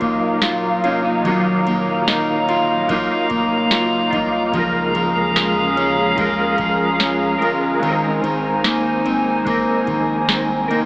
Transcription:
Already playing: F#3 A#3 D#4 F4 F5 A#5
0.01 D#1 A#3, kick, ride
0.42 F4, snare, ride, tambourine
0.83 F1 C#4 D#4 F4, ride
0.88 A#3
1.05 D#4
1.22 D#1 D#3 F#3 F5, ride
1.27 A#3 D#4 F4
1.67 A#3, ride
2.08 D#4, snare, ride, tambourine
2.49 D#1 F4, ride
2.88 F#3 A#3 D#4, kick, ride
2.93 F4
3.30 F1 A#3, kick, ride
3.71 F#1 F4, snare, ride, tambourine
4.10 C2 D#4 F4, kick, ride
4.15 A#3
4.51 C#2 C#3 F3 G#3 C#4 G#4 F5, kick, ride
4.57 F4 A#4
4.95 F3, ride
5.16 D#2
5.36 G#3, snare, ride, tambourine
5.77 C#4, ride
6.16 F3 G#3 F4, kick, ride
6.21 A#4
6.58 C#2 F3, kick, ride
7.00 C#4, snare, ride, tambourine
7.38 G1 G#3 F4 A#4, ride
7.44 G#3
7.79 G#1 D#3 G#3 C4 D#4 G#5, ride
7.84 D#4 C5
7.88 A#4
8.23 D#3, ride
8.64 A#3, snare, ride, tambourine
9.05 G#1 C4, ride
9.45 G#3 A#3 C4 D#4, kick, ride
9.50 A#4
9.87 A#1 D#3, kick, ride
10.29 C2 C4, snare, ride, tambourine
10.68 F1 A#3 D#4 A#4, ride
10.73 C4

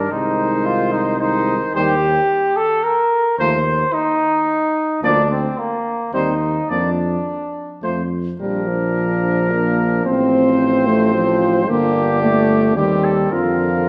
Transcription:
Already playing: D4
0.11 C2 D#3 G#3 D#4 C5
0.66 F4
0.92 D#4
1.20 D#3 G#3 D#4 C5
1.75 D#2 D#3 G3 G4 C5
2.56 A4
2.83 A#4
3.39 D#2 F3 A3 C5
3.93 D#4
5.03 D2 F3 A#3 D4 D5
5.30 C4
5.58 A#3
6.13 D#2 G3 C4 D#4 C5
6.69 F2 F3 A#3 D4 D5
7.83 F2 F3 A3 C5
8.39 A#1 F3 G3 D4 A#4
8.68 F3
9.51 A#3
10.05 A1 C4 C5
10.88 A3
11.15 F3
11.69 G1 D3 A#3 D4 G4
12.22 A3
12.76 D#2 D#3 G3 C4 G4
13.04 A4
13.32 F2 D3 F3 F4 A#4

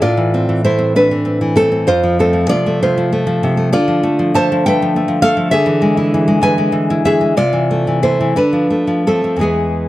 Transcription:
0.02 A2 F4 D5
0.17 E3
0.34 C4
0.49 E3
0.65 A3 E4 C5
0.78 C4
0.96 A3 D4 B4
1.11 E3
1.25 C4
1.41 E3
1.56 A3 C4 A4
1.72 C4
1.87 F2 F4 C5
2.03 F3
2.19 A3 C4 A4
2.33 F3
2.49 C3 F4 D5
2.66 A3
2.83 C3 F4 C5
2.97 F3
3.12 A3
3.27 F3
3.43 C3
3.57 A3
3.73 D3 F4 D5
3.88 F3
4.03 A3
4.19 F3
4.34 A3 C5 A5
4.52 F3
4.66 A3 B4 G5
4.82 F3
4.96 A3
5.08 F3
5.22 A3 A4 F5
5.37 F3
5.51 D3 G#4 E5
5.66 E3
5.82 G#3
5.97 E4
6.14 E3
6.28 G#3
6.41 E3 B4 G#5
6.58 G#3
6.72 E3
6.90 E4
7.05 E3 G#4 E5
7.21 G#3
7.37 C3 F4 D5
7.53 E3
7.71 A3
7.87 E3
8.03 A3 E4 C5
8.21 E3
8.36 D3 D4 B4
8.53 F3
8.70 A3
8.87 F3
9.07 A3 C4 A4
9.24 F3
9.36 E2 E3 G#3
9.41 B3 G#4

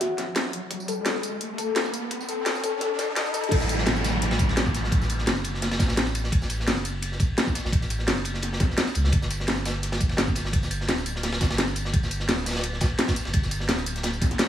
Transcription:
Already playing: riser
0.01 F#4, snare, closed hi-hat
0.18 kick, snare, closed hi-hat
0.36 snare, closed hi-hat
0.53 closed hi-hat
0.71 kick, closed hi-hat
0.80 tambourine
0.88 A4, kick, closed hi-hat, tambourine
1.06 snare, closed hi-hat
1.23 closed hi-hat, tambourine
1.41 closed hi-hat
1.58 A4, kick, closed hi-hat, tambourine
1.76 snare, closed hi-hat
1.85 snare, tambourine
1.94 closed hi-hat, tambourine
2.11 kick, closed hi-hat
2.21 tambourine
2.29 A4, closed hi-hat, tambourine
2.46 snare, closed hi-hat
2.55 tambourine
2.64 A4, kick, closed hi-hat, tambourine
2.81 A4, snare, closed hi-hat
2.99 A4, kick, snare, closed hi-hat, tambourine
3.16 A4, snare, closed hi-hat
3.26 tambourine
3.34 A4, closed hi-hat, tambourine
3.44 closed hi-hat
3.51 A1, kick, closed hi-hat, crash, ride, downlifter
3.61 snare, tambourine
3.69 closed hi-hat, ride, tambourine
3.78 snare
3.86 snare, closed hi-hat, ride
3.96 tambourine
4.04 snare, closed hi-hat, ride, tambourine
4.22 snare, closed hi-hat, ride
4.31 snare, ride
4.39 kick, closed hi-hat, tambourine
4.49 snare, ride
4.57 snare, closed hi-hat, ride
4.66 kick, snare, tambourine
4.74 snare, closed hi-hat, ride, tambourine
4.84 snare
4.92 kick, closed hi-hat, ride
5.02 snare, tambourine
5.10 closed hi-hat, ride, tambourine
5.19 snare
5.27 F#1, snare, closed hi-hat, ride
5.37 ride, tambourine
5.44 closed hi-hat, ride, tambourine
5.54 snare
5.62 snare, closed hi-hat, ride
5.71 snare, ride
5.79 A1, kick, snare, closed hi-hat, ride, tambourine
5.88 snare, ride
5.97 snare, closed hi-hat, ride
6.06 ride, tambourine
6.15 closed hi-hat, ride, tambourine
6.24 snare
6.32 kick, closed hi-hat, ride
6.42 snare, tambourine
6.50 closed hi-hat, ride, tambourine
6.60 snare
6.67 F#1, snare, closed hi-hat, ride
6.77 tambourine
6.85 closed hi-hat, ride, tambourine
7.02 closed hi-hat, ride
7.12 snare
7.19 kick, closed hi-hat, ride, tambourine
7.38 snare, closed hi-hat, ride
7.47 kick, snare, tambourine
7.55 snare, closed hi-hat, ride, tambourine
7.64 A1, snare
7.72 kick, closed hi-hat, ride
7.81 snare, tambourine
7.90 closed hi-hat, ride, tambourine
7.99 snare
8.07 F#1, snare, closed hi-hat, ride
8.17 ride, tambourine
8.25 closed hi-hat, ride, tambourine
8.34 snare
8.42 snare, closed hi-hat, ride
8.53 snare
8.60 kick, snare, closed hi-hat, ride, tambourine
8.70 snare
8.78 snare, closed hi-hat, ride
8.87 ride, tambourine
8.95 C#2, closed hi-hat, ride, tambourine
9.04 snare
9.12 G1, kick, closed hi-hat, ride
9.22 snare, tambourine
9.30 closed hi-hat, ride, tambourine
9.40 snare
9.47 snare, closed hi-hat, ride
9.57 tambourine
9.65 snare, closed hi-hat, ride, tambourine
9.82 snare, closed hi-hat, ride
9.92 snare, ride
10.00 kick, closed hi-hat, tambourine
10.09 snare, ride
10.17 snare, closed hi-hat, ride
10.27 kick, snare, tambourine
10.35 snare, closed hi-hat, ride, tambourine
10.45 snare
10.53 kick, closed hi-hat, ride
10.63 snare, tambourine
10.71 closed hi-hat, ride, tambourine
10.81 snare
10.88 D1, snare, closed hi-hat, ride
10.98 ride, tambourine
11.06 closed hi-hat, ride, tambourine
11.16 snare
11.23 snare, closed hi-hat, ride
11.32 snare, ride
11.41 G1, kick, snare, closed hi-hat, ride, tambourine
11.50 snare, ride
11.58 snare, closed hi-hat, ride
11.68 ride, tambourine
11.76 closed hi-hat, ride, tambourine
11.85 snare
11.93 kick, closed hi-hat, ride
12.03 snare, tambourine
12.11 closed hi-hat, ride, tambourine
12.20 snare
12.28 D1, snare, closed hi-hat, ride
12.38 tambourine
12.46 snare, closed hi-hat, ride, tambourine
12.51 snare, ride
12.55 snare, ride
12.59 snare, ride
12.63 closed hi-hat, ride
12.73 snare
12.81 kick, snare, closed hi-hat, ride, tambourine
12.98 snare, closed hi-hat, ride
13.08 kick, snare, ride, tambourine
13.16 closed hi-hat, tambourine
13.25 G1, snare, ride
13.33 kick, closed hi-hat, ride
13.43 snare, tambourine
13.51 closed hi-hat, ride, tambourine
13.60 snare
13.69 D1, snare, closed hi-hat, ride
13.78 ride, tambourine
13.86 closed hi-hat, ride, tambourine
13.96 snare, closed hi-hat
14.03 snare, closed hi-hat, ride
14.13 tambourine
14.21 kick, snare, closed hi-hat, ride, tambourine
14.31 snare, closed hi-hat
14.39 snare, closed hi-hat, ride

